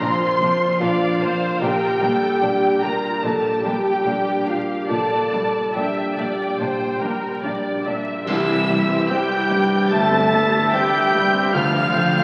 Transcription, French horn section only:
0.02 C5
0.80 F4
1.62 G4
2.83 A#4
3.23 A4
3.63 G4
4.47 F4
4.88 A4
5.75 G4
8.26 E3
9.09 G3
9.91 A3
10.73 G3
11.54 F3

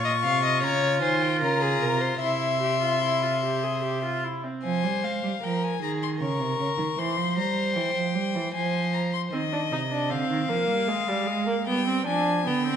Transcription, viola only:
Already playing: F4
2.21 E4
2.62 G4
2.81 F4
3.02 E4
3.23 F4
3.44 G4
3.64 G#4
3.84 G4
4.04 F4
4.25 E4
4.44 C4
9.33 C4
9.53 D4
9.72 D#4
9.91 D4
10.10 C4
10.49 A#3
10.88 G#3
11.08 G3
11.28 G#3
11.47 A#3
11.67 B3
11.87 C4
12.07 D4
12.46 B3
12.67 C4

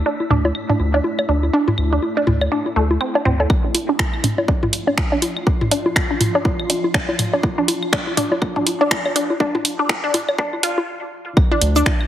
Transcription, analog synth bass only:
0.30 D2
0.79 D2
1.29 D2
1.78 D2
2.27 D2
2.76 D2
3.25 D2
11.62 D2

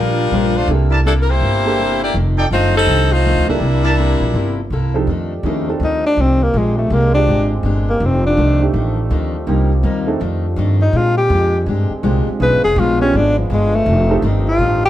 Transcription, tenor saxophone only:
5.84 D#4
6.06 D4
6.21 C4
6.43 A#3
6.58 G#3
6.78 A3
6.93 A#3
7.15 D4
7.90 A#3
8.05 C4
8.26 D4
10.82 D#4
10.97 F4
11.18 G4
12.43 B4
12.65 G#4
12.79 F4
13.02 C#4
13.17 D4
13.39 F3
13.54 G#3
13.75 A3
14.48 F4
14.86 G4

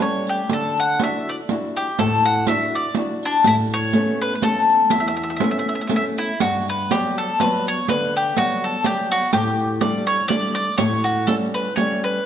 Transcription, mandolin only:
0.02 C#5
0.29 G4
0.53 A4
0.80 F#5
1.03 E5
1.29 D5
1.77 G4
1.99 A4
2.25 F#5
2.48 E5
2.75 D5
3.25 D4
3.47 E4
3.74 C#5
4.22 B4
4.35 B4
4.43 A4
4.91 E5
5.00 E5
5.08 E5
5.17 E5
5.23 E5
5.30 E5
5.37 E5
5.44 E5
5.51 E5
5.59 E5
5.69 E5
5.75 E5
5.81 E5
5.87 E5
5.96 E5
6.18 E4
6.41 F#4
6.69 B4
6.91 G4
7.18 A4
7.41 B4
7.68 C#5
7.89 B4
8.16 G4
8.38 F#4
8.64 A4
8.86 G4
9.12 F#4
9.33 G4
9.81 D5
10.07 C#5
10.28 D5
10.55 D5
10.78 C#5
11.04 F#4
11.27 A4
11.54 B4
11.76 C#5
12.04 B4

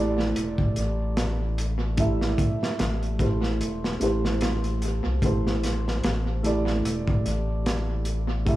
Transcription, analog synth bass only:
Already playing: A1
0.36 E1
0.77 A1
2.80 A1
3.61 E1
4.01 A1
5.06 C2
5.23 A1
6.04 A1
6.85 E1
7.25 A1

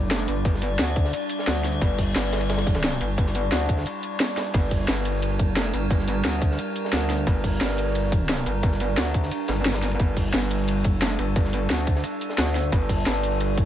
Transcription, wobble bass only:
Already playing: G1
0.02 F#1
0.28 G1
0.79 D2
1.47 D2
1.82 G1
2.16 G1
3.01 G1
3.52 D2
4.54 G1
4.88 G1
5.47 F#1
5.74 G1
6.25 D2
6.93 D2
7.27 G1
7.61 G1
8.46 G1
8.97 D2
9.49 G1
10.00 G1
10.34 G1
10.93 F#1
11.19 G1
11.70 D2
12.38 D2
12.72 G1
13.06 G1

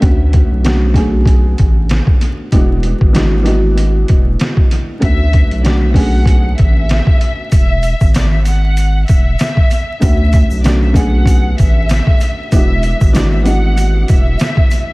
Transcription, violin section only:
5.02 E5
5.64 D5
5.83 E5
5.95 F#5
6.59 E5
7.52 E5
8.16 D5
8.31 E5
8.46 F#5
9.07 E5
10.02 E5
10.63 D5
10.83 E5
10.98 F#5
11.59 E5
12.52 E5
13.15 D5
13.31 E5
13.45 F#5
14.10 E5

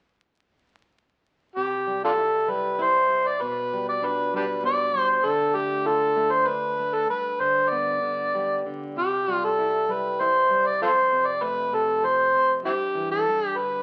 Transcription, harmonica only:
1.56 G4
2.04 D4 F4 A4
2.50 B4
2.83 C5
3.27 D5
3.41 B4
3.89 D5
4.06 B4
4.36 D4 G4 B4
4.65 D5
4.99 C5
5.10 C5
5.25 A4
5.54 G4
5.86 A4
6.31 C5
6.47 B4
6.94 A4
7.10 B4
7.40 C5
7.70 D5
8.98 G4
9.33 F4
9.45 A4
9.92 B4
10.21 C5
10.66 D5
10.82 F4 A4 C5
11.26 D5
11.43 B4
11.74 A4
12.05 C5
12.65 C4 E4 G4
13.11 A4
13.47 G4
13.57 B4

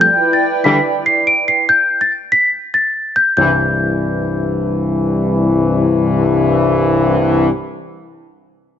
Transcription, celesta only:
0.01 G6
0.33 A6
0.64 B6
1.06 C7
1.27 D7
1.48 C7
1.69 G6
2.01 A6
2.32 B6
2.74 A6
3.16 G6
3.37 G6

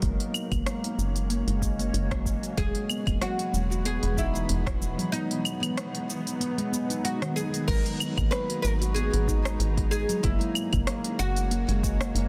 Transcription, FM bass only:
0.02 F#1
0.52 F#1
0.98 F#1
1.48 F#1
1.94 F#1
2.58 E1
3.07 E1
3.54 E1
4.03 E1
4.50 E1
7.68 G#1
8.18 G#1
8.64 G#1
9.14 G#1
9.60 G#1
10.24 F#1
10.73 F#1
11.20 F#1
11.68 F#1
12.15 F#1

